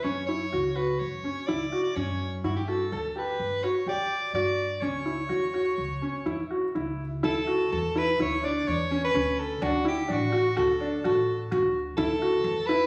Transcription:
0.03 upright bass F#2, grand piano C#4, soprano saxophone C#5
0.27 grand piano E4, soprano saxophone C#5
0.53 upright bass C#2, grand piano F#4
0.76 grand piano F#4, soprano saxophone B4
0.99 upright bass F#2, soprano saxophone C#5
1.24 grand piano C#4
1.47 upright bass C#2, grand piano E4, soprano saxophone D5
1.72 grand piano F#4
1.95 upright bass F#2, grand piano C#4, soprano saxophone C#5
2.44 upright bass G2, grand piano E4, soprano saxophone F#4
2.56 soprano saxophone G4
2.68 grand piano F#4, soprano saxophone A4
2.92 upright bass D2, grand piano A4, soprano saxophone A4
3.16 grand piano G4, soprano saxophone B4
3.40 upright bass G2
3.63 grand piano F#4, soprano saxophone C#5
3.86 upright bass D2, grand piano G4, soprano saxophone D5
4.34 upright bass G2, grand piano F#4, soprano saxophone D5
4.81 upright bass C#2, grand piano C#4, soprano saxophone C#5
5.06 grand piano E4
5.29 upright bass E2, grand piano F#4
5.54 grand piano F#4
5.78 upright bass C#2
6.02 grand piano C#4
6.26 upright bass E2, grand piano E4
6.51 grand piano F#4
6.75 upright bass C#2, grand piano E4
7.23 upright bass D2, grand piano E4, soprano saxophone A4
7.47 grand piano F#4
7.72 upright bass E2, soprano saxophone A4
7.96 grand piano E4, soprano saxophone B4
8.20 upright bass D2, grand piano E4, soprano saxophone C#5
8.43 grand piano D4, soprano saxophone D5
8.68 upright bass E2, soprano saxophone C#5
8.91 grand piano C#4
9.04 soprano saxophone B4
9.14 upright bass D2, grand piano C#4
9.39 soprano saxophone A4
9.62 upright bass D2, grand piano D4, soprano saxophone F#4
9.85 grand piano E4, soprano saxophone G4
10.08 upright bass A1, grand piano D4, soprano saxophone F#4
10.32 grand piano F#4
10.57 upright bass D2, grand piano F#4, soprano saxophone A4
10.81 grand piano D4
11.04 upright bass A1, grand piano F#4, soprano saxophone A4
11.51 upright bass D2, grand piano F#4
11.97 upright bass D2, grand piano E4, soprano saxophone A4
12.22 grand piano F#4
12.44 upright bass E2
12.66 grand piano E4, soprano saxophone B4

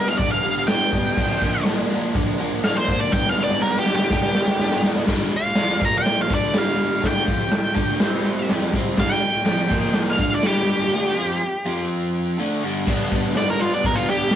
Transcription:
Already playing: overdriven electric guitar G2 D3 G3 B3 D4
0.07 lead electric guitar F5, shaker
0.18 overdriven electric guitar G2 D3 G3 B3 D4, lead electric guitar D5, kick, open hi-hat, shaker
0.31 lead electric guitar F5
0.43 overdriven electric guitar G2 D3 G3 B3 D4, shaker
0.66 overdriven electric guitar G2 D3 G3 B3 D4, lead electric guitar G5, snare, open hi-hat, shaker
0.91 overdriven electric guitar G2 D3 G3 B3 D4, kick, shaker
1.15 overdriven electric guitar A#2 D3 F3 A#3 D4, kick, crash, shaker
1.41 overdriven electric guitar A#2 D3 F3 A#3 D4, kick, shaker
1.65 overdriven electric guitar A#2 D3 F3 A#3 D4, snare, open hi-hat, shaker
1.89 overdriven electric guitar A#2 D3 F3 A#3 D4, shaker
2.04 shaker
2.14 overdriven electric guitar A#2 D3 F3 A#3 D4, kick, open hi-hat, shaker
2.38 overdriven electric guitar A#2 D3 F3 A#3 D4, shaker
2.62 overdriven electric guitar A#2 D3 F3 A#3 D4, lead electric guitar F5, snare, open hi-hat, shaker
2.77 lead electric guitar C5
2.87 overdriven electric guitar A#2 D3 F3 A#3 D4, kick, shaker
3.00 lead electric guitar D5
3.11 overdriven electric guitar G2 D3 G3 B3 D4, lead electric guitar G5, kick, snare, shaker
3.26 lead electric guitar F5, snare
3.37 overdriven electric guitar G2 D3 G3 B3 D4, snare, shaker
3.44 lead electric guitar D5
3.50 snare
3.60 overdriven electric guitar G2 D3 G3 B3 D4, lead electric guitar A#4, snare, shaker
3.74 snare
3.79 lead electric guitar G4
3.86 overdriven electric guitar G2 D3 G3 B3 D4, snare, shaker
3.95 lead electric guitar G4, snare
4.10 overdriven electric guitar G2 D3 G3 B3 D4, kick, snare, shaker
4.22 snare
4.34 overdriven electric guitar G2 D3 G3 B3 D4, snare, shaker
4.48 snare
4.59 overdriven electric guitar G2 D3 G3 B3 D4, snare, shaker
4.72 snare
4.83 overdriven electric guitar G2 D3 G3 B3 D4, snare, shaker
4.95 snare
5.07 overdriven electric guitar G2 D3 G3, kick, snare, crash, shaker
5.32 muted overdriven electric guitar stroke, ride, shaker
5.36 lead electric guitar F5
5.55 overdriven electric guitar F2 C3 F3, snare, ride, shaker
5.80 overdriven electric guitar A#2 F3 A#3, kick, ride, shaker
5.85 lead electric guitar A#5
5.98 lead electric guitar G5
6.06 snare, ride, shaker
6.22 lead electric guitar F5
6.29 overdriven electric guitar D3 A3 D4, kick, ride, shaker
6.34 lead electric guitar D5
6.54 overdriven electric guitar G2 D3 G3, snare, ride, shaker
6.58 lead electric guitar F5
6.79 ride, shaker
7.01 overdriven electric guitar D3 A3 D4, kick, snare, ride, shaker
7.07 lead electric guitar G5
7.26 overdriven electric guitar F3 C4 F4, kick, ride, shaker
7.52 muted overdriven electric guitar stroke, snare, ride, shaker
7.74 overdriven electric guitar D3 A3 D4, kick, ride, shaker
7.99 overdriven electric guitar C3 G3 C4, snare, ride, shaker
8.26 ride, shaker
8.49 overdriven electric guitar F2 C3 F3, snare, ride, shaker
8.73 overdriven electric guitar C3 G3 C4, kick, ride, shaker
8.97 overdriven electric guitar G2 D3 G3, lead electric guitar F5, kick, snare, crash, shaker
9.12 lead electric guitar G5
9.21 muted overdriven electric guitar stroke, ride
9.44 overdriven electric guitar F2 C3 F3, snare, ride, shaker
9.68 overdriven electric guitar A#2 F3 A#3, kick, crash
9.72 shaker
9.94 snare, shaker
10.10 lead electric guitar F5
10.18 overdriven electric guitar D3 A3 D4, kick, ride, shaker
10.35 lead electric guitar D5
10.43 overdriven electric guitar G2 D3 G3, lead electric guitar G4, snare, ride, shaker
10.68 ride, shaker
10.92 overdriven electric guitar D3 A3 D4
11.16 overdriven electric guitar F3 C4 F4
11.41 muted overdriven electric guitar stroke
11.65 overdriven electric guitar F3 C4 F4
12.38 overdriven electric guitar D3 A3 D4
12.63 overdriven electric guitar G2 D3 G3
12.86 overdriven electric guitar G2 D3 G3 B3 D4, kick, crash
13.10 overdriven electric guitar G2 D3 G3 B3 D4, kick
13.35 overdriven electric guitar G2 D3 G3 B3 D4, lead electric guitar D5, snare, open hi-hat
13.50 lead electric guitar A#4
13.59 overdriven electric guitar G2 D3 G3 B3 D4, lead electric guitar F4
13.74 lead electric guitar D5
13.84 overdriven electric guitar G2 D3 G3 B3 D4, lead electric guitar A#4, kick, open hi-hat
13.95 lead electric guitar F4
14.09 overdriven electric guitar G2 D3 G3 B3 D4, lead electric guitar G4
14.31 snare, open hi-hat

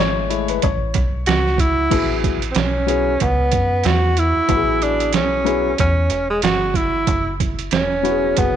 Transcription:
Already playing: upright piano G#3 A3 E4
0.00 fm bass G#1, upright piano C#5
0.29 upright piano G#3 A3 E4, closed hi-hat
0.48 upright piano B4, closed hi-hat
0.62 fm bass A1, upright piano C#5, kick, closed hi-hat
0.94 fm bass B1, kick, closed hi-hat
1.26 fm bass C#2, tenor saxophone F#4, snare, closed hi-hat
1.46 snare
1.58 tenor saxophone E4, kick, closed hi-hat
1.90 fm bass A1, upright piano F#3 B3 E4 G#4, kick, closed hi-hat, crash
2.24 kick, closed hi-hat
2.42 closed hi-hat
2.51 tenor saxophone C4, closed hi-hat
2.56 fm bass B1, tenor saxophone C#4, snare
2.86 upright piano F#3 B3 E4 G#4, closed hi-hat
3.20 fm bass C#2, tenor saxophone B3, kick, closed hi-hat
3.52 fm bass F#2, kick, closed hi-hat
3.84 fm bass E2, tenor saxophone F#4, snare, closed hi-hat
4.17 tenor saxophone E4, closed hi-hat
4.36 fm bass E2
4.48 fm bass A1, upright piano F#3 B3 E4 F#4, kick, closed hi-hat
4.57 upright piano G#4
4.82 tenor saxophone D4, closed hi-hat
5.00 closed hi-hat
5.13 fm bass B1, tenor saxophone C#4, snare, closed hi-hat
5.45 upright piano F#3 B3 E4 G#4, closed hi-hat
5.78 fm bass E2, tenor saxophone C#4, kick, closed hi-hat
6.10 fm bass E1, closed hi-hat
6.30 tenor saxophone G#3
6.42 fm bass G1, tenor saxophone F#4, snare, closed hi-hat
6.74 tenor saxophone E4, kick, closed hi-hat
7.07 fm bass F#1, kick, closed hi-hat
7.40 kick, closed hi-hat
7.59 closed hi-hat
7.71 fm bass E1, tenor saxophone C#4, snare, closed hi-hat
8.03 upright piano F#3 B3 E4 F#4, closed hi-hat
8.11 upright piano G#4
8.37 fm bass F#1, tenor saxophone B3, kick, closed hi-hat

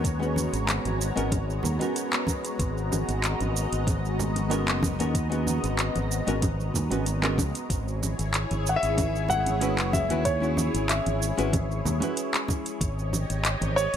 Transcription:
Already playing: fretless electric bass D#2, analog synth pad G#3 B3 F#4 C#5 A#5
0.04 kick, closed hi-hat, cabasa
0.19 hollow-body jazz guitar G#3 B3 C#4 F#4 B4, cabasa
0.36 high conga, cabasa
0.53 fretless electric bass G#1, closed hi-hat, cabasa
0.69 clap, closed hi-hat, cabasa
0.85 fretless electric bass G#1, closed hi-hat, high conga, cabasa
1.01 cabasa
1.16 fretless electric bass G#1, hollow-body jazz guitar G#3 B3 C#4 F#4 A#4, closed hi-hat, cabasa
1.32 kick, closed hi-hat, high conga, cabasa
1.50 cabasa
1.63 fretless electric bass D#2, low conga, cabasa
1.79 hollow-body jazz guitar G#3 B3 C#4 F#4 A#4, closed hi-hat, high conga, cabasa
1.96 closed hi-hat, cabasa
2.13 clap, closed hi-hat, cabasa
2.27 kick, high conga, cabasa
2.45 closed hi-hat, cabasa
2.59 fretless electric bass G#1, analog synth pad D#5, kick, closed hi-hat, cabasa
2.78 cabasa
2.92 high conga, cabasa
3.08 fretless electric bass G#1, closed hi-hat, cabasa
3.24 clap, closed hi-hat, cabasa
3.40 fretless electric bass G#1, closed hi-hat, high conga, cabasa
3.56 cabasa
3.72 fretless electric bass G#1, closed hi-hat, cabasa
3.87 kick, closed hi-hat, high conga, cabasa
4.05 cabasa
4.19 low conga, cabasa
4.36 closed hi-hat, high conga, cabasa
4.50 hollow-body jazz guitar G#3 B3 C#4 F#4 A#4, closed hi-hat, cabasa
4.68 fretless electric bass F#1, clap, closed hi-hat, cabasa
4.83 kick, high conga, cabasa
4.99 fretless electric bass D#2, hollow-body jazz guitar G#3 B3 C#4 F#4 A#4, closed hi-hat, cabasa
5.15 kick, closed hi-hat, cabasa
5.30 hollow-body jazz guitar G#3 B3 C#4 F#4 B4, closed hi-hat, cabasa
5.47 high conga, cabasa
5.64 fretless electric bass G#1, closed hi-hat, cabasa
5.79 clap, closed hi-hat, cabasa
5.95 fretless electric bass G#1, closed hi-hat, high conga, cabasa
6.11 cabasa
6.27 fretless electric bass G#1, hollow-body jazz guitar G#3 B3 C#4 F#4 A#4, closed hi-hat, cabasa
6.42 kick, closed hi-hat, high conga, cabasa
6.60 cabasa
6.74 fretless electric bass D#2, kick, low conga, cabasa
6.90 fretless electric bass G#1, hollow-body jazz guitar G#3 B3 C#4 F#4 B4, closed hi-hat, high conga, cabasa
7.06 closed hi-hat, cabasa
7.22 hollow-body jazz guitar G#3 B3 C#4 F#4 A#4, clap, closed hi-hat, cabasa
7.38 fretless electric bass C#2, kick, high conga, cabasa
7.55 closed hi-hat, cabasa
7.69 fretless electric bass G#1, analog synth pad E4 G#4 C#5, kick, closed hi-hat, cabasa
7.88 cabasa
8.03 high conga, cabasa
8.19 fretless electric bass G#1, closed hi-hat, cabasa
8.34 clap, closed hi-hat, cabasa
8.51 fretless electric bass G#1, closed hi-hat, high conga, cabasa
8.67 grand piano F#5, cabasa
8.76 grand piano E5
8.83 fretless electric bass G#1, closed hi-hat, cabasa
8.98 kick, closed hi-hat, high conga, cabasa
9.16 cabasa
9.29 grand piano F#5, low conga, cabasa
9.46 closed hi-hat, high conga, cabasa
9.61 hollow-body jazz guitar G#3 C#4 E4 F#4 B4, closed hi-hat, cabasa
9.78 fretless electric bass F#1, clap, closed hi-hat, cabasa
9.93 grand piano E5, kick, high conga, cabasa
10.10 fretless electric bass D#2, hollow-body jazz guitar G#3 C#4 E4 F#4 B4, closed hi-hat, cabasa
10.25 grand piano C#5, kick, closed hi-hat, cabasa
10.40 hollow-body jazz guitar G#3 C#4 E4 F#4 C#5, cabasa
10.57 high conga, cabasa
10.74 fretless electric bass G#1, closed hi-hat, cabasa
10.89 grand piano E5, clap, closed hi-hat, cabasa
11.06 fretless electric bass G#1, closed hi-hat, high conga, cabasa
11.22 cabasa
11.37 fretless electric bass G#1, hollow-body jazz guitar G#3 C#4 E4 F#4 B4, closed hi-hat, cabasa
11.53 kick, closed hi-hat, high conga, cabasa
11.71 cabasa
11.85 fretless electric bass D#2, low conga, cabasa
12.00 hollow-body jazz guitar G#3 C#4 E4 F#4 B4, closed hi-hat, high conga, cabasa
12.17 closed hi-hat, cabasa
12.34 clap, closed hi-hat, cabasa
12.48 kick, high conga, cabasa
12.66 closed hi-hat, cabasa
12.81 fretless electric bass G#1, analog synth pad G4 C#5 D#5, kick, closed hi-hat, cabasa
12.99 cabasa
13.13 high conga, cabasa
13.30 fretless electric bass G#1, closed hi-hat, cabasa
13.45 clap, closed hi-hat, cabasa
13.61 fretless electric bass G#1, closed hi-hat, high conga, cabasa
13.76 grand piano C#5, cabasa
13.94 fretless electric bass G#1, closed hi-hat

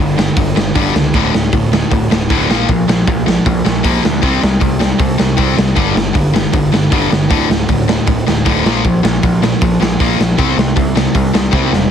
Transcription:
Already playing: distorted electric guitar G2
0.00 picked electric bass G1, distorted electric guitar D3
0.18 distorted electric guitar G2 D3, snare
0.37 picked electric bass G1, distorted electric guitar G2 D3, kick, open hi-hat
0.56 picked electric bass G1, distorted electric guitar G2 D3, snare
0.75 picked electric bass G1, distorted electric guitar G2 D3 G3, kick, open hi-hat
0.94 picked electric bass C#2, distorted electric guitar G2 D3, snare
1.14 picked electric bass D1, distorted electric guitar D2 A2 D3, kick, open hi-hat
1.34 picked electric bass D1, distorted electric guitar D2 A2, snare
1.53 picked electric bass D1, distorted electric guitar D2 A2, kick, open hi-hat
1.73 distorted electric guitar D2 A2, snare
1.91 picked electric bass D1, distorted electric guitar D2 A2, kick, open hi-hat
2.10 picked electric bass D1, distorted electric guitar D2 A2, snare
2.30 picked electric bass D1, distorted electric guitar D2 A2 D3, kick, open hi-hat
2.49 picked electric bass A#1, distorted electric guitar A#2 F3 A#3, snare
2.69 picked electric bass A#1, distorted electric guitar A#2 F3, kick, open hi-hat
2.88 picked electric bass A#1, distorted electric guitar A#2 F3, snare
3.07 picked electric bass A#1, distorted electric guitar A#2 F3, kick, open hi-hat
3.26 distorted electric guitar A#2 F3, snare
3.46 picked electric bass A#1, distorted electric guitar A#2 F3, kick, open hi-hat
3.65 picked electric bass A#1, distorted electric guitar A#2 F3, snare
3.83 picked electric bass A#1, distorted electric guitar A#2 F3 A#3, kick, open hi-hat
4.03 picked electric bass D2, distorted electric guitar A#2 F3, snare
4.22 picked electric bass C2, distorted electric guitar C3 G3 C4, kick, open hi-hat
4.41 picked electric bass C2, distorted electric guitar C3 G3, snare
4.60 picked electric bass C2, distorted electric guitar C3 G3, kick, open hi-hat
4.79 distorted electric guitar C3 G3, snare
4.99 picked electric bass C2, distorted electric guitar C3 G3, kick, open hi-hat
5.18 picked electric bass C2, distorted electric guitar C3 G3, snare
5.37 picked electric bass C2, distorted electric guitar C3 G3 C4, kick, open hi-hat
5.57 picked electric bass C2, distorted electric guitar C3 G3, snare
5.75 picked electric bass G1, distorted electric guitar G2 D3 G3, kick, open hi-hat
5.95 picked electric bass G1, distorted electric guitar G2 D3, snare
6.13 picked electric bass G1, distorted electric guitar G2 D3, kick, open hi-hat
6.33 distorted electric guitar G2 D3, snare
6.53 picked electric bass G1, distorted electric guitar G2 D3, kick, open hi-hat
6.73 picked electric bass G1, distorted electric guitar G2 D3, snare
6.92 picked electric bass G1, distorted electric guitar G2 D3 G3, kick, open hi-hat
7.11 picked electric bass G1, distorted electric guitar G2 D3, snare
7.30 picked electric bass D1, distorted electric guitar D2 A2 D3, kick, open hi-hat
7.49 picked electric bass D1, distorted electric guitar D2 A2, snare
7.69 picked electric bass D1, distorted electric guitar D2 A2, kick, open hi-hat
7.88 distorted electric guitar D2 A2, snare
8.07 picked electric bass D1, distorted electric guitar D2 A2, kick, open hi-hat
8.27 picked electric bass D1, distorted electric guitar D2 A2, snare
8.45 picked electric bass D1, distorted electric guitar D2 A2 D3, kick, open hi-hat
8.64 picked electric bass A#1, distorted electric guitar A#2 F3 A#3, snare
8.84 picked electric bass A#1, distorted electric guitar A#2 F3, kick, open hi-hat
9.03 picked electric bass A#1, distorted electric guitar A#2 F3, snare
9.23 picked electric bass A#1, distorted electric guitar A#2 F3, kick, open hi-hat
9.43 distorted electric guitar A#2 F3, snare
9.61 picked electric bass A#1, distorted electric guitar A#2 F3, kick, open hi-hat
9.81 picked electric bass A#1, distorted electric guitar A#2 F3, snare
10.00 picked electric bass A#1, distorted electric guitar A#2 F3 A#3, kick, open hi-hat
10.19 picked electric bass A#1, distorted electric guitar A#2 F3, snare
10.38 picked electric bass C2, distorted electric guitar C3 G3 C4, kick, open hi-hat
10.57 picked electric bass C2, distorted electric guitar C3 G3, snare
10.76 picked electric bass C2, distorted electric guitar C3 G3, kick, open hi-hat
10.96 distorted electric guitar C3 G3, snare
11.15 picked electric bass C2, distorted electric guitar C3 G3, kick, open hi-hat
11.33 distorted electric guitar C3 G3, snare
11.51 picked electric bass C2, distorted electric guitar C3 G3 C4, kick, snare
11.72 picked electric bass E1, distorted electric guitar C3 G3, snare

